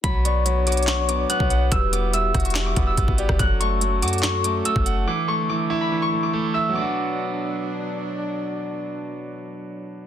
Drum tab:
HH |x---x---x---xxxxx---x---x---x---|x---x---x---xxxxx---x---x---x---|x---x---x---xxxxx---x---x---x---|--------------------------------|
CP |----------------x---------------|----------------x---------------|----------------x---------------|--------------------------------|
SD |----------------o---------------|------------r---o-------------r-|----------------o---------------|--------------------------------|
BD |o-------------------------o-----|o-----------o-------o---o-o---o-|o-------------------------o-----|--------------------------------|

HH |--------------------------------|--------------------------------|
CP |--------------------------------|--------------------------------|
SD |--------------------------------|--------------------------------|
BD |--------------------------------|--------------------------------|